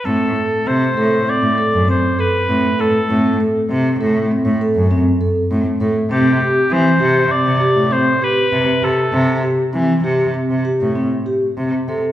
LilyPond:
<<
  \new Staff \with { instrumentName = "Oboe" } { \time 5/4 \key a \dorian \tempo 4 = 99 a'4 c''4 d''4 c''8 b'4 a'8~ | a'8 r1 r8 | g'4 c''4 d''4 c''8 b'4 a'8~ | a'8 r1 r8 | }
  \new Staff \with { instrumentName = "Vibraphone" } { \time 5/4 \key a \dorian c'8 a'8 c'8 a'8 c'8 a'8 c'8 a'8 c'8 a'8 | c'8 a'8 c'8 a'8 c'8 a'8 c'8 a'8 c'8 a'8 | c'8 g'8 c'8 g'8 c'8 g'8 c'8 g'8 c'8 g'8 | c'8 g'8 c'8 g'8 c'8 g'8 c'8 g'8 c'8 a'8 | }
  \new Staff \with { instrumentName = "Cello" } { \clef bass \time 5/4 \key a \dorian a,8 r8 c8 a,8 r16 a,16 r16 fis,8 r8. a,16 r16 a,16 r16 | a,8 r8 c8 a,8 r16 a,16 r16 fis,8 r8. a,16 r16 a,16 r16 | c8 r8 e8 c8 r16 c16 r16 a,8 r8. c16 r16 c16 r16 | c8 r8 e8 c8 r16 c16 r16 a,8 r8. c16 r16 c16 r16 | }
>>